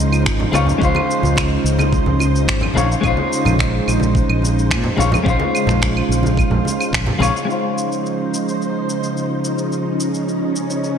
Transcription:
0.00 0.28 C#2 medium
0.00 7.45 C#3 medium
0.00 2.72 F3 medium
0.00 0.49 G#3 medium
0.00 0.50 C#4 medium
0.00 0.51 D#4 medium
0.00 2.72 D#4 medium
0.00 0.52 F4 medium
0.00 0.53 C5 medium
0.00 7.45 C5 medium
0.00 shaker medium
0.13 claves medium
0.13 shaker soft
0.26 0.44 G#1 medium
0.26 finger snap medium
0.26 kick loud
0.26 shaker soft
0.40 low conga medium
0.52 0.71 C#2 loud
0.52 0.64 G#3 medium
0.52 0.65 C#4 medium
0.52 0.65 D#4 medium
0.52 0.65 F4 medium
0.52 0.66 C#5 medium
0.52 high conga loud
0.52 claves medium
0.52 shaker medium
0.67 low conga medium
0.67 shaker soft
0.78 0.91 C#2 loud
0.78 2.71 G#3 medium
0.78 2.72 C#4 medium
0.78 2.73 D#4 medium
0.78 kick medium
0.83 2.74 F4 medium
0.83 2.75 C5 medium
0.83 shaker soft
0.95 high conga loud
0.95 claves medium
1.11 shaker medium
1.23 1.57 C#2 medium
1.23 low conga medium
1.23 shaker soft
1.36 finger snap medium
1.36 kick medium
1.36 high conga medium
1.36 claves medium
1.36 shaker soft
1.64 1.98 C#2 medium
1.64 shaker medium
1.79 high conga loud
1.79 claves medium
1.79 shaker soft
1.93 kick loud
1.93 shaker soft
2.06 2.49 C#2 medium
2.06 low conga medium
2.20 high conga medium
2.20 claves medium
2.20 shaker medium
2.36 shaker soft
2.48 2.66 G#1 medium
2.48 finger snap medium
2.48 kick loud
2.48 shaker soft
2.61 low conga medium
2.61 claves medium
2.74 2.94 A#1 loud
2.74 2.87 G#3 medium
2.74 7.45 G#3 medium
2.74 2.87 C#4 medium
2.74 4.96 D#4 medium
2.74 2.87 D#4 medium
2.74 2.88 F4 medium
2.74 high conga medium
2.74 shaker medium
2.78 2.88 C#5 medium
2.92 shaker soft
3.01 3.13 A#1 medium
3.01 4.94 G#3 medium
3.01 4.95 C#4 medium
3.01 4.96 D#4 medium
3.01 kick medium
3.01 claves medium
3.05 4.96 F4 medium
3.05 4.97 C5 medium
3.05 shaker soft
3.17 high conga medium
3.33 shaker medium
3.45 3.79 A#1 medium
3.45 low conga medium
3.45 claves medium
3.45 shaker soft
3.58 finger snap medium
3.58 kick medium
3.58 high conga medium
3.58 shaker soft
3.88 4.21 A#1 medium
3.88 claves medium
3.88 shaker medium
4.00 high conga medium
4.00 shaker soft
4.15 kick loud
4.15 shaker soft
4.29 4.72 A#1 medium
4.29 claves medium
4.42 high conga medium
4.42 shaker medium
4.59 shaker soft
4.71 4.88 A#2 medium
4.71 finger snap medium
4.71 kick medium
4.71 claves medium
4.71 shaker soft
4.84 low conga medium
4.97 5.16 A#1 loud
4.97 5.09 G#3 medium
4.97 5.09 C#4 medium
4.97 5.09 D#4 medium
4.97 7.46 F4 medium
4.97 5.10 F4 medium
4.97 5.10 C#5 medium
4.97 high conga medium
4.97 shaker medium
5.12 low conga medium
5.12 claves medium
5.12 shaker soft
5.23 5.35 A#1 loud
5.23 7.16 G#3 medium
5.23 7.17 C#4 medium
5.23 7.18 D#4 medium
5.23 kick medium
5.28 7.18 F4 medium
5.28 7.19 C5 medium
5.28 shaker soft
5.40 high conga loud
5.55 claves medium
5.55 shaker medium
5.67 6.01 A#1 medium
5.67 finger snap soft
5.67 low conga medium
5.67 shaker soft
5.81 finger snap medium
5.81 kick medium
5.81 high conga medium
5.81 shaker soft
5.97 claves medium
6.09 6.43 A#1 medium
6.09 shaker medium
6.23 high conga medium
6.23 shaker soft
6.37 kick medium
6.37 claves medium
6.37 shaker soft
6.50 6.59 A#1 medium
6.50 low conga medium
6.65 high conga medium
6.65 shaker medium
6.81 claves medium
6.81 shaker soft
6.93 7.11 A#1 loud
6.93 finger snap loud
6.93 kick medium
6.93 shaker soft
7.07 low conga medium
7.19 7.29 A#1 medium
7.19 7.31 G#3 medium
7.19 7.31 C#4 medium
7.19 7.32 D#4 medium
7.19 7.32 F4 medium
7.19 7.33 C#5 medium
7.19 high conga medium
7.19 claves medium
7.23 shaker medium
7.37 shaker soft
7.45 10.98 F3 medium
7.45 10.98 G#3 medium
7.45 10.98 C#4 medium
7.45 10.98 D#4 medium
7.49 10.98 C#3 medium
7.49 10.98 F4 medium
7.49 9.69 C5 medium
7.49 10.98 C5 medium
7.49 shaker soft
7.78 shaker medium
7.92 shaker soft
8.06 shaker soft
8.34 shaker medium
8.49 shaker soft
8.62 shaker soft
8.89 shaker medium
9.04 shaker soft
9.17 shaker soft
9.45 shaker medium
9.58 shaker soft
9.70 10.98 C#4 medium
9.70 shaker soft
10.00 shaker medium
10.14 shaker soft
10.29 shaker soft
10.56 shaker medium
10.70 shaker soft
10.84 shaker soft

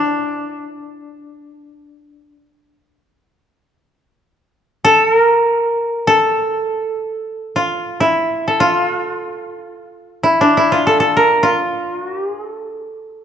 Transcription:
0.00 2.32 D4 soft
0.00 1.02 E4 medium
4.85 5.13 A4 medium
5.13 6.13 A#4 medium
6.07 7.98 A4 medium
7.56 8.06 F4 medium
8.00 8.66 E4 medium
8.48 10.38 A4 medium
8.60 10.29 F4 medium
10.23 10.57 E4 medium
10.41 12.83 D4 medium
10.57 10.78 E4 medium
10.72 11.43 F4 medium
10.87 11.00 A4 medium
11.00 11.23 A4 medium
11.17 11.49 A#4 medium
11.43 11.94 F4 medium
11.94 12.13 F#4 medium
12.13 12.33 G4 medium
12.33 12.52 G#4 medium
12.52 13.24 A4 medium

